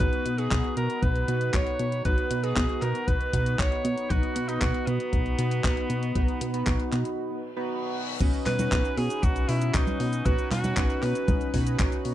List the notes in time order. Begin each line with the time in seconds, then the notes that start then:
0.00 B1 B3 D#4 F#4 B4, kick, closed hi-hat
0.13 closed hi-hat
0.26 B2, closed hi-hat
0.38 B3 D#4 F#4 G#4 B4, closed hi-hat
0.51 B1, kick, clap, closed hi-hat
0.64 closed hi-hat
0.77 B2 A#4, closed hi-hat
0.90 closed hi-hat
1.02 B1 B4, kick, closed hi-hat
1.15 closed hi-hat
1.28 B2 B3 D#4 F#4 B4, closed hi-hat
1.41 closed hi-hat
1.54 B1 C#5, kick, clap, closed hi-hat
1.67 closed hi-hat
1.79 B2, closed hi-hat
1.92 closed hi-hat
2.05 B1 B3 D#4 F#4 B4, kick, closed hi-hat
2.18 closed hi-hat
2.31 B2, closed hi-hat
2.44 B3 D#4 F#4 G#4 B4, closed hi-hat
2.56 B1, kick, clap, closed hi-hat
2.69 closed hi-hat
2.82 B2 A#4, clap, closed hi-hat
2.95 closed hi-hat
3.07 B1 B4, kick, closed hi-hat
3.21 closed hi-hat
3.33 B2 B3 D#4 F#4 B4, kick, closed hi-hat
3.46 closed hi-hat
3.59 B1 C#5, kick, clap, closed hi-hat
3.72 closed hi-hat
3.84 B2, closed hi-hat
3.98 closed hi-hat
4.10 B1 B3 D#4 F#4 B4, kick, closed hi-hat
4.23 closed hi-hat
4.36 B2, closed hi-hat
4.49 B3 D#4 F#4 B4, closed hi-hat
4.61 B1 F#4, kick, clap, closed hi-hat
4.74 closed hi-hat
4.87 B2 B3, closed hi-hat
5.00 closed hi-hat
5.13 B1, kick, closed hi-hat
5.26 closed hi-hat
5.38 B2 B3 D#4 F#4 B4, closed hi-hat
5.51 closed hi-hat
5.64 B1, kick, clap, closed hi-hat
5.77 closed hi-hat
5.90 B2, closed hi-hat
6.03 closed hi-hat
6.15 B1 B3 D#4 F#4 B4, kick, closed hi-hat
6.28 closed hi-hat
6.41 B2, closed hi-hat
6.54 B3 D#4 F#4 B4, closed hi-hat
6.67 B1, kick, clap, closed hi-hat
6.80 closed hi-hat
6.92 B2, clap, closed hi-hat
7.05 closed hi-hat
7.18 reverse cymbal
7.56 B3 D#4 F#4 B4
8.21 B1 C#4 D#4 F#4 B4, kick, closed hi-hat, crash, cabasa
8.33 closed hi-hat, cabasa
8.46 B2 B4, clap, open hi-hat, high conga
8.59 C#4 D#4 F#4 B4, closed hi-hat, high conga, cabasa
8.72 B1, kick, clap, closed hi-hat, cabasa
8.85 closed hi-hat, cabasa
8.97 B2 G#4, open hi-hat
9.10 closed hi-hat, cabasa
9.23 B1 F#4, kick, closed hi-hat, cabasa
9.36 closed hi-hat, cabasa
9.49 B2 C#4 D#4 E4 F#4 B4, open hi-hat
9.62 closed hi-hat, cabasa
9.74 B1 D#4, kick, clap, closed hi-hat, cabasa
9.87 closed hi-hat, high conga, cabasa
10.00 B2, open hi-hat
10.13 closed hi-hat, cabasa
10.26 B1 C#4 D#4 F#4 B4, kick, closed hi-hat, cabasa
10.38 closed hi-hat, cabasa
10.51 B2 F#4, clap, open hi-hat, high conga
10.64 C#4 D#4 F#4 B4, closed hi-hat, high conga, cabasa
10.77 B1, kick, clap, closed hi-hat, cabasa
10.90 closed hi-hat, cabasa
11.03 B2 B4, clap, open hi-hat
11.15 closed hi-hat, cabasa
11.28 B1, kick, closed hi-hat, high conga, cabasa
11.41 closed hi-hat, cabasa
11.54 B2 C#4 D#4 F#4 B4, kick, open hi-hat
11.67 closed hi-hat, cabasa
11.79 B1, kick, clap, closed hi-hat, cabasa
11.92 closed hi-hat, cabasa
12.05 B2, open hi-hat